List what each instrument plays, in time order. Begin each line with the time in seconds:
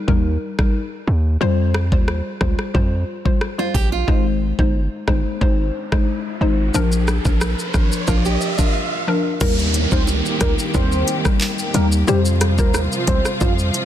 0.08 808-style bass D#2, synth pluck G3 D#4 A#4, kick
0.59 synth pluck G3 D#4 A#4, kick, cross-stick
1.07 808-style bass D#2
1.41 808-style bass F2, synth pluck G3 F4 C5
1.74 cross-stick
1.92 808-style bass D#2, synth pluck G3 F4 C5, kick
2.08 cross-stick
2.41 808-style bass C#2, synth pluck G3 F4 C5, kick, cross-stick
2.59 cross-stick
2.74 808-style bass F2, synth pluck G3 F4 C5, kick
3.25 synth pluck G3 F4 C5, kick
3.41 cross-stick
3.58 synth pluck G3 F4 C5, nylon-string guitar F4
3.74 808-style bass A#1, nylon-string guitar G4, kick
3.92 nylon-string guitar F4
4.07 808-style bass G#1, synth pluck G#3 D#4 C5, kick, riser
4.59 808-style bass G1, synth pluck G#3 D#4 C5, kick
5.08 808-style bass G1, synth pluck G#3 D#4 C5, kick, cross-stick
5.41 808-style bass G#1, synth pluck G#3 D#4 C5, kick
5.92 synth pluck G#3 D#4 C5, kick, cross-stick
6.41 808-style bass G#1, synth pluck G#3 D#4 C5
6.74 808-style bass A#1, synth pluck F3 D4 A#4, shaker
6.92 shaker
7.08 cross-stick, shaker
7.25 808-style bass A#1, synth pluck F3 D4 A#4, kick, shaker
7.41 cross-stick, shaker
7.59 shaker
7.74 808-style bass G#1, synth pluck F3 D4 A#4, kick, cross-stick, shaker
7.92 shaker
8.08 808-style bass A#1, synth pluck F3 D4 A#4, nylon-string guitar F4, kick, shaker
8.25 nylon-string guitar G4, shaker
8.41 shaker
8.58 synth pluck F3 D4 A#4, nylon-string guitar F4, kick, shaker
9.07 synth pluck F3 D4 A#4
9.41 808-style bass D#2, string section D#3 G3 A#3 G4, synth pluck G3 D#4 A#4, soft synth lead A#4, kick, crash, downlifter, shaker
9.59 shaker
9.74 closed hi-hat, shaker
9.92 808-style bass C#2, synth pluck G3 D#4 A#4, soft synth lead C5, kick, shaker
10.07 high bongo, shaker
10.26 shaker
10.41 808-style bass C#2, synth pluck G3 D#4 A#4, soft synth lead A#4, kick, cross-stick, closed hi-hat, low bongo, shaker
10.59 shaker
10.74 808-style bass D#2, synth pluck G3 D#4 A#4, soft synth lead C5, kick, high bongo, shaker
10.92 shaker
11.08 closed hi-hat, high bongo, shaker
11.25 synth pluck G3 D#4 A#4, kick, cross-stick, shaker
11.41 clap, shaker
11.59 shaker
11.74 808-style bass D#2, synth pluck G3 D#4 A#4, soft synth lead A#4, closed hi-hat, high bongo, low bongo, shaker
11.92 shaker
12.07 808-style bass F2, string section C3 F3 F4, synth pluck G3 F4 C5, soft synth lead G4, shaker
12.25 shaker
12.41 cross-stick, closed hi-hat, shaker
12.58 808-style bass D#2, synth pluck G3 F4 C5, soft synth lead A#4, kick, shaker
12.74 cross-stick, high bongo, shaker
12.92 shaker
13.07 808-style bass C#2, synth pluck G3 F4 C5, soft synth lead C5, kick, closed hi-hat, low bongo, shaker
13.25 cross-stick, shaker
13.41 808-style bass F2, synth pluck G3 F4 C5, soft synth lead F4, kick, high bongo, shaker
13.59 shaker
13.74 closed hi-hat, high bongo, shaker